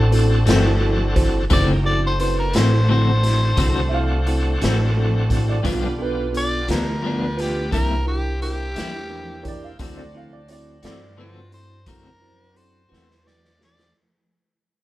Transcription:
Already playing: A1 C4 D4 F#4 A4
0.12 C4 E4 F#4 A4, closed hi-hat
0.46 G1 A3 C4 E4 F#4 A4, snare, closed hi-hat
0.80 C4 E4 F#4 A4
1.16 C4 E4 F#4 C5, kick, closed hi-hat
1.50 F#1 D3 A3 A#3 C4 C#4 D#4 E4 F#4 G4 C5 D5, kick, closed hi-hat
1.83 A3 C4 D4 E4 F#4 A4 D5
2.07 C5
2.20 C4 E4 F#4 B4 C5, closed hi-hat
2.39 A#4
2.54 A1 C4 E4 F#4 A4 C5, snare, closed hi-hat
2.58 A3
2.89 D3 A3 C4 E4 F#4 A4 C5
3.23 C4 E4 F#4 A4, snare, closed hi-hat
3.57 C2 D3 A3 C4 E4 F#4 A4, kick, closed hi-hat
3.89 C4 E4 F#4 A4 E5
3.94 F5
4.27 C4 E4 F#4 A4, closed hi-hat
4.61 A1 A3 C4 E4 F#4 A4, snare, closed hi-hat
4.97 C4 E4 F#4 A4
5.30 C4 E4 F#4 A4, kick, closed hi-hat
5.49 D5
5.62 B1 G2 F3 B3 D4 F4 G4 A4, kick, closed hi-hat
5.66 B3 D4
5.99 B3 D4 F4 A4 B4
6.32 B3 D4 F4 A4, closed hi-hat
6.37 D5
6.68 D2 F3 B3 D4 F4 G4 A#4, snare, closed hi-hat
7.02 G2 F3 B3 D4 F4 A4
7.37 B3 D4 F4 G4 B4, closed hi-hat
7.41 snare
7.71 C2 C3 G3 A#3 C4 D4 E4 G4 A#4, kick, closed hi-hat
8.06 D4 E4 G4 A#4
8.41 D4 E4 G4 A#4, closed hi-hat
8.75 E2 G3 A#3 D4 E4 G4 A#4, snare, closed hi-hat
9.09 D4 E4 G4 A#4
9.43 D4 E4 G4 A#4 C#5, kick, closed hi-hat
9.48 D5
9.64 F5
9.79 D2 D3 F#3 A3 C4 D4 E4 F#4 A4 D5, kick, closed hi-hat
9.97 D5
10.14 C4 E4 F#4 A4 F5
10.33 D5
10.48 C4 E4 F#4 A4 C#5, closed hi-hat
10.52 D5
10.83 G2 A3 C4 E4 F#4 A4 D5, snare, closed hi-hat
11.17 D3 A3 C4 E4 F4 F#4 B4
11.52 C4 E4 F#4 A4 C5, closed hi-hat
11.86 F#2 D3 A3 C4 E4 F#4 A4 A#4, kick, closed hi-hat
12.21 C4 E4 F#4 C5
12.54 C4 E4 F#4 A4 C5, closed hi-hat
12.89 E2 A3 C4 E4 F#4 B4
12.93 snare
13.11 snare
13.23 C4 E4 F#4 B4, snare
13.27 D5
13.45 snare
13.58 C4 E4 F#4 A4, snare
13.64 D5
13.79 snare

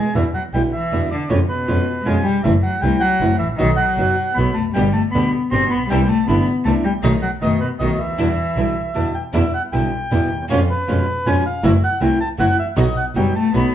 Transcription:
Already playing: G#3 G#5
0.14 E2 B2 D3 E3 G3 B3 E4 E5
0.34 F#3 F#5
0.53 B1 B2 D3 G3 B3 E4 G5
0.72 E3 E5
0.92 E2 B2 D3 G3 B3 E4
1.11 D3 D5
1.29 F2 B2 C#3 F3 G#3 C#4 F4 C#5
1.47 B2 B4
1.67 F2 B2 F3 G#3 C#4 F4
2.04 F2 B2 F3 G#3 C#4 F4 G#5
2.23 G3 G5
2.43 F#1 E3 A3 C4 E4 E5
2.62 F#3 F#5
2.81 C2 E3 G3 A3 C4 E4 G5
3.00 F#3 F#5
3.21 F#1 E3 A3 C4 E4
3.38 A1 E3 E5
3.57 B1 B2 D#3 F#3 B3 D#4 F#4 D#5
3.76 F#3 F#5
3.97 F#1 B2 F#3 B3 D#4 F#4
4.34 B1 B2 F#3 B3 D#4 F#4 B5
4.53 F1 A3 A5
4.73 G1 B2 D3 G3 B3 D4 G4 G5
4.93 A3 A5
5.11 D2 B2 D3 G3 B3 D4 G4 B5
5.50 G1 B2 D3 G3 B3 C4 D4 G4 C6
5.70 A#1 B3 B5
5.88 C2 C3 E3 G3 C4 D4 E4 G5
6.08 A3 A5
6.27 G1 C3 E3 G3 B3 C4 D4 E4 B5
6.64 C2 C3 E3 G3 A3 C4 D4 E4 A5
6.84 G3 G5
7.03 B1 B2 D#3 A3 B3 D#4 F#4 D#5
7.22 F#3 F#5
7.41 F#1 B2 D#3 A3 B3 D#4 F#4 D#5
7.60 B2 B4
7.79 B1 B2 D#3 A3 B3 D#4 F#4 D#5
7.99 D2 E3 E5
8.18 E2 B2 D3 G3 B3 D4 E4
8.56 B1 B2 D3 G3 B3 D4 E4
8.94 E2 B2 D3 G3 B3 D4 E4 A5
9.14 G5
9.33 E2 B2 D3 G3 B3 D4 E4 E5
9.54 F#5
9.72 B1 B2 D3 G3 B3 D4 E4 G5
10.11 E2 B2 D3 G3 B3 D4 E4
10.31 D#2
10.49 F2 B2 F3 G#3 B3 C#4 F4 C#5
10.70 B4
10.88 F2 B2 F3 G#3 B3 C#4 F4
11.26 F2 B2 F3 G#3 B3 C#4 F4 G#5
11.46 F5
11.63 F#1 E3 A3 C4 E4 F#4 E5
11.84 F#5
12.00 C2 E3 A3 C4 E4 F#4 G5
12.21 A5
12.38 F#1 E3 A3 C4 E4 F#4 F#5
12.59 E5
12.76 B1 B2 F#3 B3 D#4 F#4 D#5
12.97 F#5
13.15 F#1 B2 F#3 G3 B3 D#4 F#4 G5
13.35 A3 A5
13.53 B1 B2 F#3 B3 D#4 F#4 B5

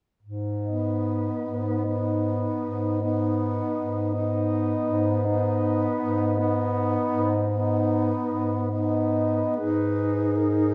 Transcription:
0.23 G#2
0.63 B3 D#4 D#5
1.46 G#2
1.83 B3 D#4 D#5
2.62 G#2
3.01 B3 D#4 D#5
3.76 G#2
4.13 B3 D#4 D#5
4.88 G#2
5.25 B3 D#4 D#5
6.01 G#2
6.35 D#4 D#5
6.39 B3
7.10 G#2
7.48 B3 D#4 D#5
8.26 G#2
8.70 B3 D#4 D#5
9.57 G#2 D#4 G#4 B4
10.37 A#4

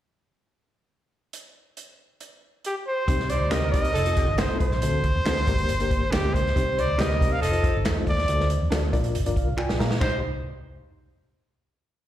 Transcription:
1.33 closed hi-hat
1.77 closed hi-hat
2.21 closed hi-hat
2.65 G4, closed hi-hat
2.88 C5
3.07 C2 C3 C4 D#4 G4 C5, kick, closed hi-hat
3.20 snare
3.30 G3 D#4 C5 D5, closed hi-hat
3.40 D2
3.51 D2 G3 C4 D#4 G4 A#4 C5 D#5, finger snap, snare, closed hi-hat
3.72 C2 C4 D#4 G4 C5 D#5, kick, closed hi-hat
3.85 closed hi-hat
3.94 F1 F3 D#4 A4, closed hi-hat
4.06 C4 D#4 F4 A4, closed hi-hat
4.17 kick, closed hi-hat
4.28 G1
4.38 D#4 A4 C5, finger snap, snare, closed hi-hat
4.50 C4 D#4 F4 A4
4.60 C2 C5, kick, closed hi-hat
4.71 A#1, snare
4.82 D2 D3 C4 D4 F#4 A4, closed hi-hat
5.04 kick, closed hi-hat
5.15 E2
5.25 D2 C4 D4 F#4 A4 C5, finger snap, snare, closed hi-hat
5.47 G1 G2 A#3 D4 G4 A#4, kick, closed hi-hat
5.58 closed hi-hat
5.68 G1, closed hi-hat
5.80 A#3 D4 G4 A#4, closed hi-hat
5.91 kick, closed hi-hat
6.01 G#1
6.12 D2 D4 G4 A#4, finger snap, snare, closed hi-hat
6.24 A#3 D4 G4 A#4
6.34 C#2 C5, kick, closed hi-hat
6.46 snare
6.56 C2 C3 C4 D#4 G4 C5, kick, closed hi-hat
6.76 G3 D#4 C5 D5, closed hi-hat
6.88 D2
6.98 D2 G3 C4 D#4 G4 A#4 C5 D#5, finger snap, snare, closed hi-hat
7.20 C2 C4 D#4 G4 C5, kick, closed hi-hat
7.32 F5
7.42 F1 F3 D#4 A4 D#5, closed hi-hat
7.52 D#4 F4 A4 C5, closed hi-hat
7.64 kick, closed hi-hat
7.75 G1
7.85 E2 D#4 A4 C5, finger snap, snare, closed hi-hat
7.96 D#4 F4 A4 C5
8.07 D#2 D5, kick, open hi-hat
8.18 snare
8.28 D2 D3 D4 F#4 A4 C5, closed hi-hat
8.40 snare
8.50 closed hi-hat
8.62 E2
8.70 D2 D4 F#4 A4 C5 D5, finger snap, snare, closed hi-hat
8.93 A#1 A#2 D4 F4 A#4 D5, kick, closed hi-hat
9.04 closed hi-hat
9.15 F1, closed hi-hat
9.26 G1 D4 F4 A#4 D5, closed hi-hat
9.36 F5, kick, closed hi-hat
9.48 C2
9.57 F4 A#4 D5 G5 G#5, finger snap, muted fingered electric bass stroke
9.69 A#1, snare
9.79 A#2 F5 A#5, snare
9.91 snare
10.00 C2 G3 D#4 G4 C5 D#5, finger snap, kick, crash

